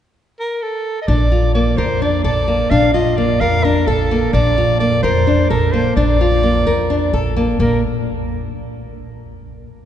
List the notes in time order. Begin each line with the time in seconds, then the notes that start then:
0.39 A#4
0.62 A4
1.02 D#5
1.07 A#1 D4 D5
1.32 F4
1.54 A#3 D5
1.77 F2 A#4 C5
2.02 D4 D5
2.24 A#1 A4 D5
2.48 A#3
2.70 A#1 D4 F5
2.93 F4 D#5
3.17 A#3 D5
3.40 F2 A#4 F5
3.64 D4 A#4
3.86 A#1 A4
4.11 A#3
4.33 A#1 D4 D5
4.58 F4
4.79 A#3 D5
5.03 F2 A#4 C5
5.27 D4
5.50 A#1 A4 A#4
5.72 A#3 C5
5.96 A#1 D4 D5
6.21 F4
6.43 A#3
6.66 F2 A#4
6.90 D4
7.13 A#1 A4
7.36 A#3
7.59 A#1 A#3 A#4